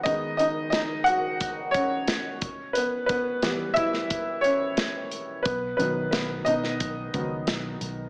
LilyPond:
<<
  \new Staff \with { instrumentName = "Upright piano" } { \time 4/4 \key e \lydian \tempo 4 = 89 <dis' dis''>8 <dis' dis''>8 <dis' dis''>8 <fis' fis''>4 <cis' cis''>4. | <b b'>8 <b b'>4 <e' e''>4 <cis' cis''>4. | <b b'>8 b'8 <b b'>8 <dis' dis''>2 r8 | }
  \new Staff \with { instrumentName = "Upright piano" } { \clef bass \time 4/4 \key e \lydian <dis gis b>4. r2 r8 | r4 <e g b>4. r4. | r8 <dis fis b>2 <dis fis b>8 r4 | }
  \new Staff \with { instrumentName = "Picked electric bass" } { \clef bass \time 4/4 \key e \lydian r1 | r1 | b,,8 b,,8 b,,8 b,8 b,,8 cis,8 b,,8 b,,8 | }
  \new DrumStaff \with { instrumentName = "Drums" } \drummode { \time 4/4 <hh bd>8 hh8 <hh sn>8 hh8 <hh bd>8 <hh bd>8 <hh sn>8 <hh bd>8 | hh8 <hh bd>8 <hh sn>8 <hh bd>16 sn16 <hh bd>8 hh8 <hh sn>8 hh8 | <hh bd>8 hh8 <hh sn>8 hh16 sn16 <hh bd>8 <hh bd>8 <hh sn>8 hh8 | }
>>